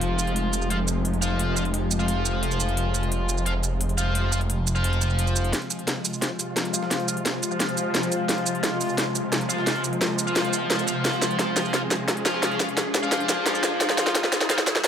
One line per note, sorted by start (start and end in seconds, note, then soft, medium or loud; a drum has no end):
0.00 5.51 F1 medium
0.00 5.49 C3 medium
0.00 5.49 F3 medium
0.00 5.49 G#3 medium
0.00 0.68 F4 medium
0.00 0.68 C5 medium
0.00 0.68 F5 medium
0.00 closed hi-hat medium
0.19 closed hi-hat medium
0.19 shaker medium
0.27 closed hi-hat soft
0.36 closed hi-hat medium
0.53 closed hi-hat medium
0.53 shaker medium
0.62 shaker soft
0.70 0.76 F4 medium
0.70 0.76 C5 medium
0.70 0.76 F5 medium
0.70 closed hi-hat medium
0.88 closed hi-hat medium
0.88 shaker medium
1.05 closed hi-hat medium
1.14 closed hi-hat soft
1.22 1.55 F4 medium
1.22 1.55 C5 medium
1.22 1.55 F5 medium
1.22 closed hi-hat medium
1.22 shaker medium
1.39 closed hi-hat medium
1.56 1.63 F4 medium
1.56 1.63 C5 medium
1.56 1.63 F5 medium
1.56 closed hi-hat medium
1.56 shaker medium
1.65 closed hi-hat soft
1.74 closed hi-hat medium
1.91 closed hi-hat medium
1.91 shaker medium
1.99 3.44 F4 medium
1.99 3.44 C5 medium
1.99 3.44 F5 medium
1.99 shaker soft
2.08 closed hi-hat medium
2.26 closed hi-hat medium
2.26 shaker medium
2.43 closed hi-hat medium
2.51 closed hi-hat soft
2.51 shaker soft
2.60 closed hi-hat medium
2.60 shaker medium
2.69 closed hi-hat soft
2.77 closed hi-hat medium
2.94 closed hi-hat medium
2.94 shaker medium
3.03 closed hi-hat soft
3.12 closed hi-hat medium
3.29 closed hi-hat medium
3.29 shaker medium
3.38 shaker soft
3.46 3.52 F4 medium
3.46 3.52 C5 medium
3.46 3.52 F5 medium
3.46 closed hi-hat medium
3.63 closed hi-hat medium
3.63 shaker medium
3.81 closed hi-hat medium
3.89 closed hi-hat soft
3.98 4.30 F4 medium
3.98 4.30 C5 medium
3.98 4.30 F5 medium
3.98 closed hi-hat medium
3.98 shaker medium
4.15 closed hi-hat medium
4.32 4.38 F4 medium
4.32 4.38 C5 medium
4.32 4.38 F5 medium
4.32 closed hi-hat medium
4.32 shaker medium
4.41 closed hi-hat soft
4.50 closed hi-hat medium
4.67 closed hi-hat medium
4.67 shaker medium
4.75 5.52 F4 medium
4.75 5.52 C5 medium
4.75 5.52 F5 medium
4.75 shaker soft
4.84 closed hi-hat loud
4.93 closed hi-hat soft
5.01 closed hi-hat medium
5.01 shaker medium
5.10 shaker soft
5.19 closed hi-hat loud
5.27 closed hi-hat soft
5.27 shaker soft
5.36 closed hi-hat medium
5.36 shaker medium
5.44 closed hi-hat soft
5.53 14.88 C3 medium
5.53 14.88 F3 medium
5.53 14.88 G#3 medium
5.53 11.03 F4 medium
5.53 snare soft
5.53 closed hi-hat medium
5.53 riser medium
5.62 closed hi-hat soft
5.70 closed hi-hat medium
5.70 shaker medium
5.79 closed hi-hat soft
5.88 snare soft
5.88 snare loud
5.88 closed hi-hat medium
6.05 closed hi-hat medium
6.05 open hi-hat medium
6.05 shaker medium
6.13 shaker soft
6.22 6.28 F4 medium
6.22 6.28 C5 medium
6.22 6.28 F5 medium
6.22 snare soft
6.22 closed hi-hat loud
6.22 closed hi-hat medium
6.39 closed hi-hat medium
6.39 shaker medium
6.57 snare soft
6.57 snare loud
6.57 closed hi-hat medium
6.65 closed hi-hat soft
6.73 7.06 F4 medium
6.73 7.06 C5 medium
6.73 7.06 F5 medium
6.73 closed hi-hat medium
6.73 shaker medium
6.82 snare medium
6.91 snare soft
6.91 closed hi-hat medium
7.00 closed hi-hat soft
7.08 7.14 F4 medium
7.08 7.14 C5 medium
7.08 7.14 F5 medium
7.08 closed hi-hat medium
7.08 shaker medium
7.17 closed hi-hat soft
7.26 snare loud
7.26 snare medium
7.26 closed hi-hat medium
7.43 closed hi-hat medium
7.43 shaker medium
7.51 8.96 F4 medium
7.51 8.96 C5 medium
7.51 8.96 F5 medium
7.51 shaker soft
7.60 snare medium
7.60 closed hi-hat loud
7.60 closed hi-hat medium
7.69 closed hi-hat soft
7.77 closed hi-hat medium
7.77 shaker medium
7.95 snare loud
7.95 snare medium
7.95 closed hi-hat medium
8.03 closed hi-hat soft
8.03 shaker soft
8.12 closed hi-hat medium
8.12 shaker medium
8.29 snare medium
8.29 closed hi-hat medium
8.38 closed hi-hat soft
8.46 closed hi-hat medium
8.46 shaker medium
8.55 closed hi-hat soft
8.63 snare medium
8.63 snare loud
8.63 closed hi-hat medium
8.81 closed hi-hat medium
8.81 open hi-hat medium
8.81 shaker medium
8.89 shaker soft
8.98 9.04 F4 medium
8.98 9.04 C5 medium
8.98 9.04 F5 medium
8.98 snare medium
8.98 closed hi-hat medium
9.15 closed hi-hat medium
9.15 shaker medium
9.32 snare medium
9.32 snare loud
9.32 closed hi-hat medium
9.41 closed hi-hat soft
9.49 9.82 F4 medium
9.49 9.82 C5 medium
9.49 9.82 F5 medium
9.49 closed hi-hat medium
9.49 shaker medium
9.58 snare medium
9.67 snare medium
9.67 closed hi-hat medium
9.76 closed hi-hat soft
9.84 closed hi-hat medium
9.84 shaker medium
9.93 closed hi-hat soft
10.01 snare loud
10.01 snare medium
10.01 closed hi-hat medium
10.19 closed hi-hat medium
10.19 shaker medium
10.27 10.86 F4 medium
10.27 10.86 C5 medium
10.27 10.86 F5 medium
10.27 shaker soft
10.36 snare medium
10.36 closed hi-hat medium
10.45 closed hi-hat soft
10.53 closed hi-hat medium
10.53 shaker medium
10.70 snare loud
10.70 snare medium
10.70 closed hi-hat medium
10.79 closed hi-hat soft
10.79 shaker soft
10.87 11.72 F4 medium
10.87 11.72 C5 medium
10.87 11.72 F5 medium
10.87 closed hi-hat medium
10.87 shaker medium
11.05 14.88 G#4 medium
11.05 snare medium
11.05 closed hi-hat medium
11.13 closed hi-hat soft
11.22 snare medium
11.22 closed hi-hat medium
11.22 shaker medium
11.31 closed hi-hat soft
11.39 snare medium
11.39 snare loud
11.39 closed hi-hat medium
11.57 snare medium
11.57 closed hi-hat medium
11.57 open hi-hat medium
11.57 shaker medium
11.65 shaker soft
11.74 11.80 F4 medium
11.74 11.80 C5 medium
11.74 11.80 F5 medium
11.74 snare medium
11.74 closed hi-hat medium
11.91 snare medium
11.91 closed hi-hat medium
11.91 shaker medium
12.08 snare medium
12.08 snare loud
12.08 closed hi-hat medium
12.17 closed hi-hat soft
12.25 12.58 F4 medium
12.25 12.58 C5 medium
12.25 12.58 F5 medium
12.25 snare medium
12.25 closed hi-hat medium
12.25 shaker medium
12.34 snare medium
12.43 snare medium
12.43 closed hi-hat medium
12.51 closed hi-hat soft
12.60 12.66 F4 medium
12.60 12.66 C5 medium
12.60 12.66 F5 medium
12.60 snare medium
12.60 closed hi-hat medium
12.60 shaker medium
12.69 closed hi-hat soft
12.77 snare loud
12.77 snare medium
12.77 closed hi-hat medium
12.95 snare medium
12.95 closed hi-hat medium
12.95 shaker medium
13.03 14.48 F4 medium
13.03 14.48 C5 medium
13.03 14.48 F5 medium
13.03 shaker soft
13.12 snare medium
13.12 closed hi-hat medium
13.20 closed hi-hat soft
13.29 snare medium
13.29 closed hi-hat medium
13.29 shaker medium
13.46 snare loud
13.46 snare medium
13.46 closed hi-hat medium
13.55 closed hi-hat soft
13.55 shaker soft
13.63 snare medium
13.63 closed hi-hat medium
13.63 shaker medium
13.81 snare medium
13.81 closed hi-hat loud
13.81 closed hi-hat medium
13.89 snare medium
13.89 closed hi-hat soft
13.98 snare medium
13.98 closed hi-hat medium
13.98 shaker medium
14.07 snare medium
14.07 closed hi-hat soft
14.15 snare loud
14.15 closed hi-hat loud
14.15 closed hi-hat medium
14.24 snare medium
14.32 snare loud
14.32 closed hi-hat medium
14.32 shaker medium
14.41 snare medium
14.41 shaker soft
14.49 14.56 F4 medium
14.49 14.56 C5 medium
14.49 14.56 F5 medium
14.49 snare loud
14.49 closed hi-hat loud
14.49 closed hi-hat medium
14.58 snare medium
14.67 snare loud
14.67 closed hi-hat medium
14.67 shaker medium
14.76 snare medium
14.84 snare loud
14.84 closed hi-hat medium